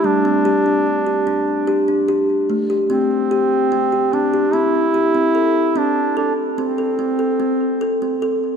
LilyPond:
<<
  \new Staff \with { instrumentName = "Duduk" } { \time 7/8 \key c \major \tempo 4 = 73 d'2~ d'8 r4 | c'4. d'8 e'4. | d'8 d'8 c'2 r8 | }
  \new Staff \with { instrumentName = "Kalimba" } { \time 7/8 \key c \major r16 c'16 g'16 d'8 g'16 d'8 g'16 d'16 g'8 a16 g'16 | c'8 g'8 c'16 g'16 c'16 g'16 c'8 g'16 c'16 a'8 | c'8 a'8 c'16 a'16 c'16 a'16 c'8 a'16 c'16 a'8 | }
  \new Staff \with { instrumentName = "Kalimba" } { \clef bass \time 7/8 \key c \major g2.~ g8 | r2. r8 | r2. r8 | }
>>